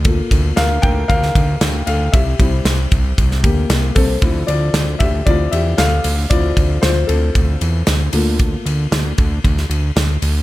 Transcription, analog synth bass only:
X:1
M:4/4
L:1/8
Q:1/4=115
K:Dm
V:1 name="Analog synth bass" clef=bass
D,, D,, D,, D,, D,, D,, D,, D,, | C,, C,, C,, C,, C,, D,, C,, C,, | D,, D,, D,, D,, D,, E,, D,, D,, | D,, D,, D,, D,, D,, E,, D,, D,,- |
D,, D,, D,, D,, D,, D,, D,, D,, |]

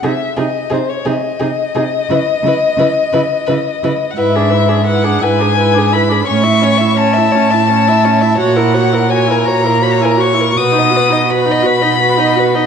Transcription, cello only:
X:1
M:12/8
L:1/8
Q:3/8=57
K:E
V:1 name="Cello" clef=bass
^B,, B,, B,, B,, B,, B,, C, C, C, C, C, C, | G,,3 G,,3 A,,3 A,,3 | ^A,,3 A,,3 B,,3 B,,3 |]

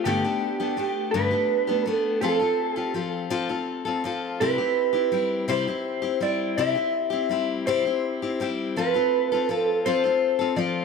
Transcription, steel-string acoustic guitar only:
X:1
M:6/8
L:1/16
Q:3/8=55
K:C
V:1 name="Steel-string acoustic guitar"
[G,,D,A,B,DG] [A,B,DG]2 [A,B,DG] [A,B,DG]2 [G,,D,A,B,DG] [A,B,DG]2 [A,B,DG] [A,B,DG]2 | [F,CFA] [CFA]2 [CFA] [F,CFA]2 [F,CFA] [CFA]2 [CFA] [F,CFA]2 | [C,G,CEG] [CEG]2 [CEG] [G,CEG]2 [C,G,CEG] [CEG]2 [CEG] [G,CEG]2 | [C,G,CEG] [CEG]2 [CEG] [G,CEG]2 [C,G,CEG] [CEG]2 [CEG] [G,CEG]2 |
[F,CFA] [CFA]2 [CFA] [F,CFA]2 [F,CFA] [CFA]2 [CFA] [F,CFA]2 |]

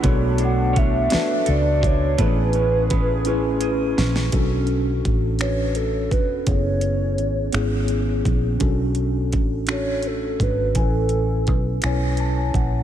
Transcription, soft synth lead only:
X:1
M:6/8
L:1/8
Q:3/8=56
K:Bdor
V:1 name="Soft synth lead"
z f e2 d c | B4 z2 | z3 c A B | c4 z2 |
z3 c A B | A4 z2 |]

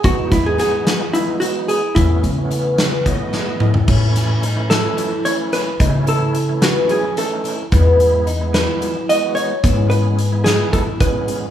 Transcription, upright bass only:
X:1
M:7/8
L:1/8
Q:1/4=110
K:Alyd
V:1 name="Upright bass" clef=bass
E,, E,, z4 z | E,, C,4 z2 | A,,4 z3 | C,4 z3 |
E,,4 z3 | G,,4 z3 |]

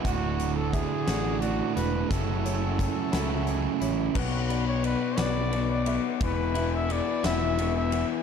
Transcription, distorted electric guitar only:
X:1
M:6/8
L:1/8
Q:3/8=58
K:Bdor
V:1 name="Distorted electric guitar" clef=bass
[D,,A,,D,A,F]3 [D,,A,,D,A,F]3 | [F,,C,F,A,CE]3 [F,,C,F,A,CE]3 | z6 | z6 |]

